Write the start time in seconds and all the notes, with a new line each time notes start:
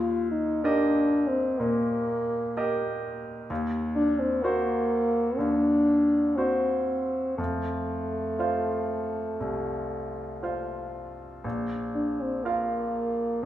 Already playing: D#2 F4
0.31 D#4
0.63 D4 G4 A#4 D#5
1.27 C4
1.60 A#2 A#3
2.57 G4 A#4 D#5
3.50 D#2
3.96 D4
4.20 C4
4.43 A#3 F#4 C5
5.38 D#2 D4
6.36 C4 F#4 C5
7.38 F2 A3
8.39 F4 C5 F5
9.40 C2
10.43 F4 C5 F5
11.44 A#1
11.95 D4
12.21 C4
12.44 A#3 F4 A#4 F5